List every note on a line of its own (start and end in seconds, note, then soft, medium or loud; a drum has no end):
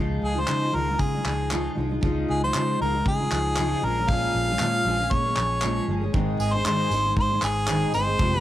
0.00 0.18 C#2 medium
0.00 0.35 C#3 medium
0.00 0.35 F3 medium
0.00 0.36 G#3 medium
0.00 0.35 D#4 medium
0.00 0.34 F4 medium
0.22 0.43 C#2 medium
0.22 0.41 G#4 medium
0.35 0.46 G#3 soft
0.35 0.47 D#4 soft
0.35 0.47 F4 medium
0.40 0.76 C5 medium
0.47 0.73 C#3 medium
0.47 0.69 C#3 medium
0.47 0.71 F3 medium
0.47 0.72 G#3 medium
0.47 0.73 D#4 medium
0.47 0.74 F4 medium
0.47 clap medium
0.72 0.95 C#2 medium
0.72 0.87 F3 medium
0.72 0.88 G#3 medium
0.72 0.88 D#4 medium
0.72 0.88 F4 medium
0.72 1.02 A#4 medium
0.89 1.15 G#3 soft
0.89 1.15 D#4 soft
0.89 1.13 F4 soft
0.99 1.20 C#3 medium
0.99 1.77 G#4 medium
0.99 kick medium
1.15 1.26 G#3 soft
1.15 1.26 D#4 soft
1.15 1.26 F4 soft
1.25 1.67 C#2 medium
1.25 1.50 F3 soft
1.25 1.51 G#3 medium
1.25 1.51 D#4 soft
1.25 1.52 F4 medium
1.25 clap medium
1.50 1.76 C#3 medium
1.50 1.74 F3 medium
1.50 1.75 G#3 medium
1.50 1.76 D#4 medium
1.50 1.77 F4 medium
1.50 clap loud
1.50 clap medium
1.75 1.98 C2 medium
1.75 1.90 F3 medium
1.75 1.90 G#3 medium
1.75 1.90 D#4 medium
1.75 1.88 F4 medium
1.89 2.01 G#3 soft
1.89 2.01 D#4 medium
1.89 2.01 F4 medium
2.01 2.24 C#2 medium
2.01 2.41 C#3 medium
2.01 2.42 F3 medium
2.01 2.42 G#3 medium
2.01 2.42 D#4 medium
2.01 2.41 F4 medium
2.01 kick loud
2.30 2.50 C#2 medium
2.30 2.42 G#4 medium
2.42 2.54 G#3 soft
2.42 2.54 D#4 soft
2.42 2.54 F4 soft
2.42 2.78 C5 medium
2.54 2.80 C#3 medium
2.54 2.75 C#3 medium
2.54 2.79 F3 medium
2.54 2.80 G#3 medium
2.54 2.80 D#4 medium
2.54 clap loud
2.56 2.81 F4 medium
2.56 clap medium
2.80 3.01 C#2 medium
2.80 2.94 F3 medium
2.80 2.95 G#3 medium
2.80 2.95 D#4 medium
2.80 2.93 F4 medium
2.80 3.04 A#4 medium
2.95 3.21 G#3 soft
2.95 3.20 D#4 soft
2.95 3.19 F4 medium
3.06 3.27 C#3 medium
3.06 3.86 G#4 medium
3.06 kick loud
3.20 3.31 G#3 soft
3.20 3.31 D#4 soft
3.20 3.31 F4 medium
3.31 3.73 C#2 medium
3.31 3.57 F3 soft
3.31 3.57 G#3 soft
3.31 3.57 D#4 medium
3.31 3.58 F4 medium
3.31 clap medium
3.57 3.83 C#3 medium
3.57 3.82 G#3 medium
3.57 clap loud
3.58 3.81 F3 medium
3.58 3.83 D#4 medium
3.58 3.84 F4 medium
3.58 clap loud
3.83 4.25 A#1 medium
3.83 3.97 F3 medium
3.83 3.97 G#3 medium
3.83 3.97 C#4 medium
3.83 3.96 G#4 medium
3.83 4.11 A#4 medium
3.98 4.09 G#3 soft
3.98 4.09 C#4 soft
3.98 4.09 G#4 medium
4.09 4.49 A#2 medium
4.09 4.49 F3 medium
4.09 4.49 G#3 medium
4.09 4.49 C#4 medium
4.09 4.47 G#4 medium
4.09 5.13 F5 loud
4.09 kick loud
4.35 4.55 A#1 medium
4.48 4.60 G#3 soft
4.48 4.60 C#4 medium
4.48 4.60 G#4 medium
4.59 4.81 A#2 medium
4.59 4.86 A#2 medium
4.59 4.84 F3 medium
4.59 clap medium
4.61 4.86 G#3 medium
4.61 4.86 C#4 medium
4.61 4.87 G#4 medium
4.61 clap medium
4.85 5.06 A#1 medium
4.85 4.99 F3 medium
4.85 5.00 G#3 medium
4.85 5.00 C#4 medium
4.85 4.98 G#4 medium
4.99 5.26 G#3 soft
4.99 5.26 C#4 soft
4.99 5.24 G#4 medium
5.11 5.32 A#2 loud
5.11 5.89 C#5 medium
5.11 kick loud
5.25 5.37 G#3 soft
5.25 5.38 C#4 soft
5.25 5.37 G#4 medium
5.37 5.79 A#1 medium
5.37 5.61 F3 soft
5.37 5.62 G#3 medium
5.37 5.63 C#4 medium
5.37 5.64 G#4 medium
5.37 clap medium
5.62 5.88 A#2 medium
5.62 5.87 F3 medium
5.62 5.88 G#3 medium
5.62 5.89 C#4 medium
5.62 5.89 G#4 medium
5.62 clap loud
5.62 clap medium
5.88 6.09 G1 medium
5.88 6.02 F3 medium
5.88 6.03 G#3 medium
5.88 6.02 C#4 medium
5.88 6.00 G#4 medium
6.01 6.13 G#3 soft
6.01 6.14 C#4 medium
6.01 6.13 G#4 medium
6.13 6.35 G#1 loud
6.13 6.53 G#2 medium
6.13 6.54 D#3 loud
6.13 6.54 G#3 medium
6.13 6.54 C4 medium
6.13 6.54 D#4 medium
6.13 6.53 G#4 medium
6.13 kick loud
6.40 6.61 G#1 loud
6.40 6.56 G#4 medium
6.40 tambourine medium
6.54 6.65 G#3 soft
6.54 6.65 C4 soft
6.54 6.66 D#4 medium
6.54 6.65 G#4 medium
6.54 6.65 C5 loud
6.65 6.91 G#2 medium
6.65 6.86 G#2 medium
6.65 6.91 D#3 medium
6.65 6.90 G#3 medium
6.65 6.91 C4 medium
6.65 6.92 D#4 medium
6.65 6.92 G#4 medium
6.65 7.14 C5 loud
6.65 clap loud
6.65 clap medium
6.91 7.12 G#1 medium
6.91 7.05 G#3 medium
6.91 7.06 C4 medium
6.91 7.05 D#4 medium
6.91 7.05 G#4 medium
6.91 tambourine medium
7.06 7.32 G#3 soft
7.06 7.31 C4 soft
7.06 7.31 D#4 soft
7.06 7.29 G#4 medium
7.17 7.38 G#2 loud
7.17 7.42 C5 medium
7.17 kick loud
7.31 7.40 G#3 soft
7.31 7.42 C4 soft
7.31 7.42 D#4 soft
7.31 7.42 G#4 medium
7.42 7.84 G#1 medium
7.42 7.68 G#3 soft
7.42 7.68 C4 soft
7.42 7.69 D#4 medium
7.42 7.91 G#4 loud
7.42 7.69 G#4 medium
7.42 clap medium
7.42 tambourine medium
7.68 7.94 G#2 medium
7.68 7.94 D#3 medium
7.68 7.92 G#3 medium
7.68 7.92 C4 medium
7.68 7.94 D#4 medium
7.68 7.94 G#4 medium
7.68 clap loud
7.68 clap medium
7.93 8.15 G1 medium
7.93 8.07 G#3 medium
7.93 8.07 C4 medium
7.93 8.06 D#4 medium
7.93 8.05 G#4 medium
7.93 8.40 C5 loud
7.93 tambourine medium
8.06 8.18 G#3 soft
8.06 8.19 C4 medium
8.06 8.19 D#4 medium
8.06 8.19 G#4 medium
8.18 8.40 F1 medium
8.18 8.33 F2 medium
8.18 8.33 C3 medium
8.18 8.34 F3 medium
8.18 8.33 G#3 medium
8.18 8.33 C4 medium
8.18 8.32 G4 medium
8.18 kick loud
8.33 8.40 F3 soft
8.33 8.40 G#3 soft
8.33 8.40 C4 soft
8.33 8.40 G4 medium